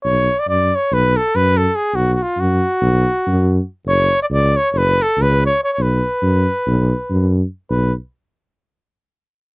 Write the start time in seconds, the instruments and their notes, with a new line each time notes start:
0.04 tuba B1, cornet C#5
0.39 cornet D5
0.48 tuba F#2, cornet D5
0.75 cornet C#5
0.92 tuba B1, cornet B4
1.17 cornet A4
1.35 tuba F#2, cornet B4
1.57 cornet A4
1.75 cornet G#4
1.93 tuba B1, cornet F#4
2.14 cornet F#4
2.22 cornet F4
2.37 tuba F#2, cornet F#4
2.81 tuba B1
3.27 tuba F#2
3.86 tuba F#1, cornet C#5
4.22 cornet D5
4.30 tuba C#2, cornet D5
4.57 cornet C#5
4.72 tuba F#1, cornet C#5
4.77 cornet B4
5.02 cornet A4
5.17 tuba C#2
5.22 cornet B4
5.46 cornet C#5
5.64 cornet C#5
5.73 cornet C#5
5.78 tuba B1, cornet B4
6.22 tuba F#2
6.67 tuba B1
7.10 tuba F#2
7.70 tuba B1, cornet B4